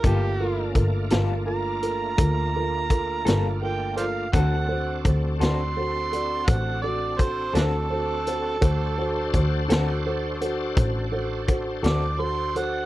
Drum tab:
HH |x-xx-xx-xx-x|x-xx-xx-xx-x|x-xx-xx-xx-x|
SD |---o-----o--|---o-----o--|---o-----o--|
BD |o-o---o-o---|o-o---o-o---|o-o---o-o---|